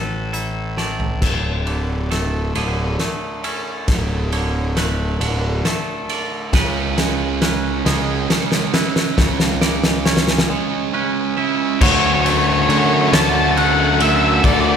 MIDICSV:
0, 0, Header, 1, 7, 480
1, 0, Start_track
1, 0, Tempo, 887574
1, 659, Time_signature, 6, 3, 24, 8
1, 3537, Tempo, 877193
1, 8039, End_track
2, 0, Start_track
2, 0, Title_t, "Lead electric guitar"
2, 0, Program_c, 0, 29
2, 6432, Note_on_c, 0, 73, 83
2, 6475, Note_off_c, 0, 73, 0
2, 6477, Note_on_c, 0, 73, 63
2, 6519, Note_off_c, 0, 73, 0
2, 6521, Note_on_c, 0, 73, 67
2, 6557, Note_off_c, 0, 73, 0
2, 6559, Note_on_c, 0, 73, 61
2, 6602, Note_off_c, 0, 73, 0
2, 6604, Note_on_c, 0, 73, 77
2, 6641, Note_off_c, 0, 73, 0
2, 6643, Note_on_c, 0, 73, 64
2, 6686, Note_off_c, 0, 73, 0
2, 6692, Note_on_c, 0, 73, 81
2, 6729, Note_off_c, 0, 73, 0
2, 6732, Note_on_c, 0, 73, 69
2, 6775, Note_off_c, 0, 73, 0
2, 6784, Note_on_c, 0, 73, 82
2, 6816, Note_off_c, 0, 73, 0
2, 6818, Note_on_c, 0, 73, 70
2, 6861, Note_off_c, 0, 73, 0
2, 6863, Note_on_c, 0, 73, 74
2, 6906, Note_off_c, 0, 73, 0
2, 6909, Note_on_c, 0, 73, 69
2, 6951, Note_off_c, 0, 73, 0
2, 6953, Note_on_c, 0, 73, 70
2, 6992, Note_off_c, 0, 73, 0
2, 6994, Note_on_c, 0, 73, 64
2, 7034, Note_off_c, 0, 73, 0
2, 7036, Note_on_c, 0, 73, 68
2, 7077, Note_off_c, 0, 73, 0
2, 7079, Note_on_c, 0, 73, 61
2, 7115, Note_off_c, 0, 73, 0
2, 7117, Note_on_c, 0, 73, 67
2, 7145, Note_off_c, 0, 73, 0
2, 7147, Note_on_c, 0, 81, 110
2, 7188, Note_off_c, 0, 81, 0
2, 7191, Note_on_c, 0, 81, 74
2, 7229, Note_off_c, 0, 81, 0
2, 7232, Note_on_c, 0, 81, 100
2, 7268, Note_off_c, 0, 81, 0
2, 7270, Note_on_c, 0, 81, 86
2, 7308, Note_off_c, 0, 81, 0
2, 7310, Note_on_c, 0, 81, 88
2, 7349, Note_off_c, 0, 81, 0
2, 7351, Note_on_c, 0, 81, 74
2, 7386, Note_off_c, 0, 81, 0
2, 7388, Note_on_c, 0, 78, 103
2, 7427, Note_off_c, 0, 78, 0
2, 7430, Note_on_c, 0, 78, 71
2, 7470, Note_off_c, 0, 78, 0
2, 7472, Note_on_c, 0, 78, 92
2, 7510, Note_off_c, 0, 78, 0
2, 7512, Note_on_c, 0, 78, 83
2, 7548, Note_off_c, 0, 78, 0
2, 7550, Note_on_c, 0, 78, 87
2, 7586, Note_off_c, 0, 78, 0
2, 7588, Note_on_c, 0, 78, 75
2, 7628, Note_off_c, 0, 78, 0
2, 7628, Note_on_c, 0, 76, 100
2, 7664, Note_off_c, 0, 76, 0
2, 7666, Note_on_c, 0, 76, 75
2, 7706, Note_off_c, 0, 76, 0
2, 7709, Note_on_c, 0, 76, 82
2, 7741, Note_off_c, 0, 76, 0
2, 7744, Note_on_c, 0, 76, 77
2, 7784, Note_off_c, 0, 76, 0
2, 7793, Note_on_c, 0, 76, 85
2, 7830, Note_off_c, 0, 76, 0
2, 7833, Note_on_c, 0, 76, 65
2, 7864, Note_off_c, 0, 76, 0
2, 7867, Note_on_c, 0, 74, 85
2, 7909, Note_off_c, 0, 74, 0
2, 7911, Note_on_c, 0, 74, 57
2, 7948, Note_off_c, 0, 74, 0
2, 7950, Note_on_c, 0, 74, 68
2, 7993, Note_off_c, 0, 74, 0
2, 7995, Note_on_c, 0, 74, 68
2, 8037, Note_off_c, 0, 74, 0
2, 8039, End_track
3, 0, Start_track
3, 0, Title_t, "Clean electric guitar"
3, 0, Program_c, 1, 27
3, 0, Note_on_c, 1, 71, 58
3, 177, Note_off_c, 1, 71, 0
3, 179, Note_on_c, 1, 69, 64
3, 419, Note_off_c, 1, 69, 0
3, 421, Note_on_c, 1, 74, 60
3, 660, Note_on_c, 1, 69, 72
3, 661, Note_off_c, 1, 74, 0
3, 1140, Note_off_c, 1, 69, 0
3, 1140, Note_on_c, 1, 69, 61
3, 1380, Note_off_c, 1, 69, 0
3, 1382, Note_on_c, 1, 68, 65
3, 1859, Note_off_c, 1, 68, 0
3, 1861, Note_on_c, 1, 69, 63
3, 2338, Note_off_c, 1, 69, 0
3, 2340, Note_on_c, 1, 73, 67
3, 2580, Note_off_c, 1, 73, 0
3, 2582, Note_on_c, 1, 71, 66
3, 3057, Note_off_c, 1, 71, 0
3, 3059, Note_on_c, 1, 69, 71
3, 3297, Note_off_c, 1, 69, 0
3, 3299, Note_on_c, 1, 74, 68
3, 3537, Note_off_c, 1, 74, 0
3, 3541, Note_on_c, 1, 71, 85
3, 4019, Note_off_c, 1, 71, 0
3, 4019, Note_on_c, 1, 71, 73
3, 4263, Note_on_c, 1, 68, 84
3, 4739, Note_off_c, 1, 68, 0
3, 4741, Note_off_c, 1, 71, 0
3, 4741, Note_on_c, 1, 71, 78
3, 5220, Note_on_c, 1, 86, 80
3, 5222, Note_off_c, 1, 71, 0
3, 5459, Note_on_c, 1, 73, 72
3, 5462, Note_off_c, 1, 86, 0
3, 5941, Note_off_c, 1, 73, 0
3, 5945, Note_on_c, 1, 71, 83
3, 6182, Note_on_c, 1, 76, 80
3, 6184, Note_off_c, 1, 71, 0
3, 6419, Note_off_c, 1, 76, 0
3, 6421, Note_on_c, 1, 73, 99
3, 6900, Note_off_c, 1, 73, 0
3, 6900, Note_on_c, 1, 73, 76
3, 7138, Note_off_c, 1, 73, 0
3, 7138, Note_on_c, 1, 73, 88
3, 7620, Note_on_c, 1, 68, 79
3, 7858, Note_off_c, 1, 68, 0
3, 7860, Note_on_c, 1, 69, 99
3, 8039, Note_off_c, 1, 69, 0
3, 8039, Note_off_c, 1, 73, 0
3, 8039, End_track
4, 0, Start_track
4, 0, Title_t, "Clean electric guitar"
4, 0, Program_c, 2, 27
4, 0, Note_on_c, 2, 45, 60
4, 0, Note_on_c, 2, 57, 55
4, 0, Note_on_c, 2, 64, 56
4, 0, Note_on_c, 2, 69, 68
4, 174, Note_off_c, 2, 64, 0
4, 178, Note_off_c, 2, 57, 0
4, 180, Note_on_c, 2, 64, 54
4, 420, Note_off_c, 2, 45, 0
4, 420, Note_on_c, 2, 57, 58
4, 658, Note_on_c, 2, 38, 54
4, 660, Note_off_c, 2, 57, 0
4, 660, Note_off_c, 2, 69, 0
4, 661, Note_off_c, 2, 64, 0
4, 901, Note_on_c, 2, 50, 54
4, 1144, Note_on_c, 2, 57, 54
4, 1378, Note_off_c, 2, 50, 0
4, 1384, Note_on_c, 2, 50, 59
4, 1616, Note_off_c, 2, 57, 0
4, 1622, Note_on_c, 2, 57, 55
4, 1861, Note_off_c, 2, 38, 0
4, 1861, Note_on_c, 2, 61, 60
4, 2098, Note_on_c, 2, 38, 63
4, 2332, Note_off_c, 2, 50, 0
4, 2338, Note_on_c, 2, 50, 60
4, 2569, Note_off_c, 2, 57, 0
4, 2575, Note_on_c, 2, 57, 59
4, 2807, Note_off_c, 2, 50, 0
4, 2814, Note_on_c, 2, 50, 65
4, 3049, Note_off_c, 2, 57, 0
4, 3056, Note_on_c, 2, 57, 58
4, 3296, Note_off_c, 2, 38, 0
4, 3531, Note_on_c, 2, 49, 73
4, 3534, Note_off_c, 2, 50, 0
4, 3535, Note_off_c, 2, 57, 0
4, 3757, Note_off_c, 2, 61, 0
4, 3773, Note_on_c, 2, 56, 67
4, 4016, Note_on_c, 2, 61, 62
4, 4248, Note_off_c, 2, 56, 0
4, 4255, Note_on_c, 2, 56, 74
4, 4739, Note_off_c, 2, 49, 0
4, 4742, Note_on_c, 2, 64, 70
4, 4985, Note_on_c, 2, 49, 76
4, 5217, Note_off_c, 2, 56, 0
4, 5221, Note_off_c, 2, 61, 0
4, 5223, Note_on_c, 2, 56, 69
4, 5462, Note_on_c, 2, 61, 71
4, 5696, Note_off_c, 2, 56, 0
4, 5702, Note_on_c, 2, 56, 77
4, 5934, Note_off_c, 2, 61, 0
4, 5941, Note_on_c, 2, 61, 69
4, 5943, Note_off_c, 2, 64, 0
4, 6184, Note_off_c, 2, 49, 0
4, 6184, Note_on_c, 2, 64, 70
4, 6421, Note_off_c, 2, 61, 0
4, 6422, Note_off_c, 2, 56, 0
4, 6423, Note_off_c, 2, 64, 0
4, 6426, Note_on_c, 2, 38, 78
4, 6662, Note_on_c, 2, 57, 70
4, 7139, Note_on_c, 2, 50, 77
4, 7373, Note_off_c, 2, 57, 0
4, 7380, Note_on_c, 2, 57, 73
4, 7621, Note_off_c, 2, 38, 0
4, 7858, Note_on_c, 2, 38, 76
4, 8039, Note_off_c, 2, 38, 0
4, 8039, Note_off_c, 2, 50, 0
4, 8039, Note_off_c, 2, 57, 0
4, 8039, End_track
5, 0, Start_track
5, 0, Title_t, "Distorted electric guitar"
5, 0, Program_c, 3, 30
5, 3532, Note_on_c, 3, 49, 86
5, 3535, Note_on_c, 3, 56, 94
5, 3537, Note_on_c, 3, 61, 99
5, 3773, Note_off_c, 3, 49, 0
5, 3775, Note_off_c, 3, 56, 0
5, 3775, Note_on_c, 3, 49, 74
5, 3777, Note_off_c, 3, 61, 0
5, 3777, Note_on_c, 3, 56, 79
5, 3779, Note_on_c, 3, 61, 88
5, 4249, Note_off_c, 3, 49, 0
5, 4252, Note_off_c, 3, 56, 0
5, 4256, Note_on_c, 3, 49, 93
5, 4258, Note_off_c, 3, 61, 0
5, 4258, Note_on_c, 3, 56, 97
5, 4260, Note_on_c, 3, 61, 104
5, 4489, Note_off_c, 3, 49, 0
5, 4493, Note_off_c, 3, 56, 0
5, 4496, Note_on_c, 3, 49, 88
5, 4499, Note_off_c, 3, 61, 0
5, 4499, Note_on_c, 3, 56, 88
5, 4501, Note_on_c, 3, 61, 91
5, 4729, Note_off_c, 3, 49, 0
5, 4732, Note_off_c, 3, 56, 0
5, 4736, Note_on_c, 3, 49, 81
5, 4738, Note_on_c, 3, 56, 90
5, 4740, Note_off_c, 3, 61, 0
5, 4742, Note_on_c, 3, 61, 87
5, 4970, Note_off_c, 3, 49, 0
5, 4971, Note_off_c, 3, 56, 0
5, 4976, Note_off_c, 3, 61, 0
5, 4977, Note_on_c, 3, 49, 94
5, 4978, Note_on_c, 3, 56, 101
5, 4982, Note_on_c, 3, 61, 102
5, 5212, Note_off_c, 3, 49, 0
5, 5214, Note_off_c, 3, 56, 0
5, 5216, Note_off_c, 3, 61, 0
5, 5218, Note_on_c, 3, 49, 86
5, 5221, Note_on_c, 3, 56, 95
5, 5223, Note_on_c, 3, 61, 92
5, 5691, Note_off_c, 3, 49, 0
5, 5695, Note_off_c, 3, 56, 0
5, 5696, Note_off_c, 3, 61, 0
5, 5698, Note_on_c, 3, 49, 96
5, 5701, Note_on_c, 3, 56, 100
5, 5702, Note_on_c, 3, 61, 109
5, 5932, Note_off_c, 3, 49, 0
5, 5935, Note_off_c, 3, 56, 0
5, 5938, Note_off_c, 3, 61, 0
5, 5939, Note_on_c, 3, 49, 88
5, 5942, Note_on_c, 3, 56, 90
5, 5944, Note_on_c, 3, 61, 96
5, 6175, Note_off_c, 3, 49, 0
5, 6176, Note_off_c, 3, 56, 0
5, 6181, Note_off_c, 3, 61, 0
5, 6181, Note_on_c, 3, 49, 89
5, 6183, Note_on_c, 3, 56, 97
5, 6188, Note_on_c, 3, 61, 96
5, 6407, Note_off_c, 3, 49, 0
5, 6408, Note_off_c, 3, 56, 0
5, 6410, Note_off_c, 3, 61, 0
5, 6416, Note_on_c, 3, 38, 92
5, 6420, Note_on_c, 3, 50, 99
5, 6421, Note_on_c, 3, 45, 103
5, 6425, Note_on_c, 3, 57, 101
5, 6426, Note_on_c, 3, 61, 108
5, 6429, Note_on_c, 3, 66, 100
5, 6660, Note_off_c, 3, 66, 0
5, 6662, Note_on_c, 3, 66, 75
5, 6664, Note_off_c, 3, 61, 0
5, 6667, Note_on_c, 3, 61, 76
5, 6668, Note_off_c, 3, 57, 0
5, 6670, Note_on_c, 3, 57, 71
5, 6672, Note_off_c, 3, 50, 0
5, 6674, Note_on_c, 3, 50, 63
5, 6899, Note_off_c, 3, 50, 0
5, 6901, Note_off_c, 3, 45, 0
5, 6901, Note_on_c, 3, 50, 79
5, 6904, Note_off_c, 3, 57, 0
5, 6907, Note_on_c, 3, 57, 78
5, 6908, Note_off_c, 3, 61, 0
5, 6909, Note_off_c, 3, 66, 0
5, 6910, Note_on_c, 3, 61, 86
5, 6911, Note_on_c, 3, 66, 91
5, 6927, Note_off_c, 3, 38, 0
5, 7132, Note_off_c, 3, 66, 0
5, 7138, Note_on_c, 3, 66, 73
5, 7141, Note_off_c, 3, 57, 0
5, 7141, Note_off_c, 3, 61, 0
5, 7143, Note_on_c, 3, 61, 75
5, 7144, Note_off_c, 3, 50, 0
5, 7147, Note_on_c, 3, 57, 68
5, 7151, Note_on_c, 3, 50, 63
5, 7371, Note_off_c, 3, 50, 0
5, 7376, Note_off_c, 3, 57, 0
5, 7377, Note_on_c, 3, 50, 80
5, 7383, Note_off_c, 3, 66, 0
5, 7383, Note_on_c, 3, 57, 80
5, 7385, Note_off_c, 3, 61, 0
5, 7387, Note_on_c, 3, 61, 88
5, 7390, Note_on_c, 3, 66, 90
5, 7612, Note_off_c, 3, 66, 0
5, 7618, Note_off_c, 3, 57, 0
5, 7618, Note_on_c, 3, 66, 78
5, 7620, Note_off_c, 3, 61, 0
5, 7623, Note_off_c, 3, 50, 0
5, 7623, Note_on_c, 3, 61, 68
5, 7625, Note_on_c, 3, 57, 69
5, 7629, Note_on_c, 3, 50, 62
5, 7853, Note_off_c, 3, 50, 0
5, 7855, Note_off_c, 3, 57, 0
5, 7855, Note_on_c, 3, 38, 100
5, 7858, Note_on_c, 3, 45, 105
5, 7860, Note_off_c, 3, 66, 0
5, 7860, Note_on_c, 3, 50, 102
5, 7862, Note_off_c, 3, 61, 0
5, 7862, Note_on_c, 3, 57, 104
5, 7865, Note_on_c, 3, 61, 106
5, 7867, Note_on_c, 3, 66, 107
5, 8039, Note_off_c, 3, 38, 0
5, 8039, Note_off_c, 3, 45, 0
5, 8039, Note_off_c, 3, 50, 0
5, 8039, Note_off_c, 3, 57, 0
5, 8039, Note_off_c, 3, 61, 0
5, 8039, Note_off_c, 3, 66, 0
5, 8039, End_track
6, 0, Start_track
6, 0, Title_t, "Picked electric bass"
6, 0, Program_c, 4, 34
6, 0, Note_on_c, 4, 33, 64
6, 639, Note_off_c, 4, 33, 0
6, 659, Note_on_c, 4, 26, 74
6, 1359, Note_off_c, 4, 26, 0
6, 1382, Note_on_c, 4, 26, 77
6, 1600, Note_off_c, 4, 26, 0
6, 2098, Note_on_c, 4, 26, 79
6, 2797, Note_off_c, 4, 26, 0
6, 2816, Note_on_c, 4, 26, 85
6, 3035, Note_off_c, 4, 26, 0
6, 3532, Note_on_c, 4, 37, 91
6, 4236, Note_off_c, 4, 37, 0
6, 4260, Note_on_c, 4, 37, 94
6, 4479, Note_off_c, 4, 37, 0
6, 4981, Note_on_c, 4, 37, 94
6, 5680, Note_off_c, 4, 37, 0
6, 6421, Note_on_c, 4, 38, 100
6, 6879, Note_off_c, 4, 38, 0
6, 6902, Note_on_c, 4, 50, 107
6, 7119, Note_off_c, 4, 50, 0
6, 7136, Note_on_c, 4, 38, 97
6, 7834, Note_off_c, 4, 38, 0
6, 7860, Note_on_c, 4, 38, 108
6, 8039, Note_off_c, 4, 38, 0
6, 8039, End_track
7, 0, Start_track
7, 0, Title_t, "Drums"
7, 182, Note_on_c, 9, 42, 51
7, 236, Note_off_c, 9, 42, 0
7, 419, Note_on_c, 9, 38, 48
7, 473, Note_off_c, 9, 38, 0
7, 540, Note_on_c, 9, 43, 64
7, 594, Note_off_c, 9, 43, 0
7, 660, Note_on_c, 9, 36, 95
7, 660, Note_on_c, 9, 38, 43
7, 660, Note_on_c, 9, 49, 94
7, 714, Note_off_c, 9, 36, 0
7, 714, Note_off_c, 9, 38, 0
7, 714, Note_off_c, 9, 49, 0
7, 901, Note_on_c, 9, 51, 52
7, 955, Note_off_c, 9, 51, 0
7, 1143, Note_on_c, 9, 38, 48
7, 1143, Note_on_c, 9, 51, 59
7, 1197, Note_off_c, 9, 38, 0
7, 1197, Note_off_c, 9, 51, 0
7, 1381, Note_on_c, 9, 51, 75
7, 1435, Note_off_c, 9, 51, 0
7, 1619, Note_on_c, 9, 38, 55
7, 1619, Note_on_c, 9, 51, 63
7, 1673, Note_off_c, 9, 38, 0
7, 1673, Note_off_c, 9, 51, 0
7, 1860, Note_on_c, 9, 51, 63
7, 1914, Note_off_c, 9, 51, 0
7, 2098, Note_on_c, 9, 38, 60
7, 2098, Note_on_c, 9, 51, 95
7, 2099, Note_on_c, 9, 36, 100
7, 2152, Note_off_c, 9, 38, 0
7, 2152, Note_off_c, 9, 51, 0
7, 2153, Note_off_c, 9, 36, 0
7, 2338, Note_on_c, 9, 51, 63
7, 2392, Note_off_c, 9, 51, 0
7, 2578, Note_on_c, 9, 38, 67
7, 2578, Note_on_c, 9, 51, 64
7, 2632, Note_off_c, 9, 38, 0
7, 2632, Note_off_c, 9, 51, 0
7, 2818, Note_on_c, 9, 51, 83
7, 2872, Note_off_c, 9, 51, 0
7, 3056, Note_on_c, 9, 38, 71
7, 3056, Note_on_c, 9, 51, 64
7, 3110, Note_off_c, 9, 38, 0
7, 3110, Note_off_c, 9, 51, 0
7, 3296, Note_on_c, 9, 51, 67
7, 3350, Note_off_c, 9, 51, 0
7, 3533, Note_on_c, 9, 38, 81
7, 3533, Note_on_c, 9, 51, 93
7, 3534, Note_on_c, 9, 36, 110
7, 3587, Note_off_c, 9, 38, 0
7, 3587, Note_off_c, 9, 51, 0
7, 3589, Note_off_c, 9, 36, 0
7, 3776, Note_on_c, 9, 38, 80
7, 3776, Note_on_c, 9, 51, 65
7, 3831, Note_off_c, 9, 38, 0
7, 3831, Note_off_c, 9, 51, 0
7, 4016, Note_on_c, 9, 38, 89
7, 4016, Note_on_c, 9, 51, 64
7, 4071, Note_off_c, 9, 38, 0
7, 4071, Note_off_c, 9, 51, 0
7, 4260, Note_on_c, 9, 38, 80
7, 4260, Note_on_c, 9, 51, 81
7, 4315, Note_off_c, 9, 38, 0
7, 4315, Note_off_c, 9, 51, 0
7, 4501, Note_on_c, 9, 38, 96
7, 4501, Note_on_c, 9, 51, 68
7, 4556, Note_off_c, 9, 38, 0
7, 4556, Note_off_c, 9, 51, 0
7, 4619, Note_on_c, 9, 38, 93
7, 4673, Note_off_c, 9, 38, 0
7, 4739, Note_on_c, 9, 38, 100
7, 4739, Note_on_c, 9, 51, 70
7, 4794, Note_off_c, 9, 38, 0
7, 4794, Note_off_c, 9, 51, 0
7, 4861, Note_on_c, 9, 38, 94
7, 4916, Note_off_c, 9, 38, 0
7, 4980, Note_on_c, 9, 38, 107
7, 4981, Note_on_c, 9, 36, 108
7, 5035, Note_off_c, 9, 38, 0
7, 5036, Note_off_c, 9, 36, 0
7, 5100, Note_on_c, 9, 38, 94
7, 5155, Note_off_c, 9, 38, 0
7, 5219, Note_on_c, 9, 38, 104
7, 5274, Note_off_c, 9, 38, 0
7, 5340, Note_on_c, 9, 38, 109
7, 5395, Note_off_c, 9, 38, 0
7, 5461, Note_on_c, 9, 38, 108
7, 5515, Note_off_c, 9, 38, 0
7, 5522, Note_on_c, 9, 38, 116
7, 5577, Note_off_c, 9, 38, 0
7, 5582, Note_on_c, 9, 38, 105
7, 5637, Note_off_c, 9, 38, 0
7, 5641, Note_on_c, 9, 38, 110
7, 5695, Note_off_c, 9, 38, 0
7, 6422, Note_on_c, 9, 49, 127
7, 6423, Note_on_c, 9, 36, 125
7, 6477, Note_off_c, 9, 49, 0
7, 6478, Note_off_c, 9, 36, 0
7, 6665, Note_on_c, 9, 51, 80
7, 6720, Note_off_c, 9, 51, 0
7, 6906, Note_on_c, 9, 51, 91
7, 6961, Note_off_c, 9, 51, 0
7, 7146, Note_on_c, 9, 38, 109
7, 7146, Note_on_c, 9, 51, 99
7, 7200, Note_off_c, 9, 38, 0
7, 7200, Note_off_c, 9, 51, 0
7, 7385, Note_on_c, 9, 51, 85
7, 7440, Note_off_c, 9, 51, 0
7, 7621, Note_on_c, 9, 51, 88
7, 7676, Note_off_c, 9, 51, 0
7, 7860, Note_on_c, 9, 36, 123
7, 7862, Note_on_c, 9, 51, 117
7, 7914, Note_off_c, 9, 36, 0
7, 7917, Note_off_c, 9, 51, 0
7, 8039, End_track
0, 0, End_of_file